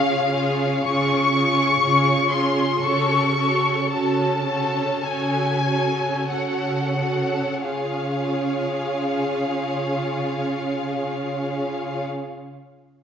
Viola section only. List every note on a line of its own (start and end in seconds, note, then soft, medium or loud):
0.00 0.31 C#4 soft
0.00 0.31 F4 soft
0.32 0.84 C#4 soft
0.32 0.84 F4 soft
0.85 1.33 C#4 soft
0.85 1.32 F4 soft
1.33 1.81 C#4 soft
1.33 1.80 F4 soft
1.82 2.30 C#4 soft
1.82 2.31 F4 soft
2.32 2.82 C#4 soft
2.32 2.82 F4 soft
2.83 3.36 C#4 soft
2.83 3.36 F#4 soft
3.37 3.90 C#4 soft
3.37 3.91 F#4 soft
3.92 4.46 C#4 soft
3.92 4.46 F#4 soft
4.47 5.04 C#4 soft
4.47 5.04 F#4 soft
5.05 5.65 C#4 soft
5.05 5.65 F#4 soft
5.66 6.28 C#4 soft
5.66 6.28 F#4 soft
6.29 6.95 C#4 soft
6.29 6.95 F#4 soft
6.96 7.62 C#4 soft
6.96 7.62 F#4 soft
7.64 12.04 C#4 soft
7.64 12.04 F4 soft